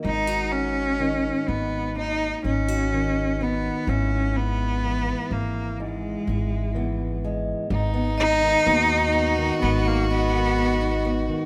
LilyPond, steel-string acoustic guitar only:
\new Staff \with { instrumentName = "Steel-string acoustic guitar" } { \time 4/4 \key gis \minor \tempo 4 = 63 << { dis'16 fis'8. dis'4. dis'16 fis'16 dis'8 b8 | e'2~ e'8 e'8 b8 gis8~ | gis16 b16 dis'8 b16 dis'16 b8. b16 dis'8 b16 dis'16 b8 | } \\ { <gis, dis>4 dis4 dis,4 dis4 | gis,4 e4 gis,4 e4 | gis,8. dis4 dis16 gis,8. dis4 dis16 | } >> }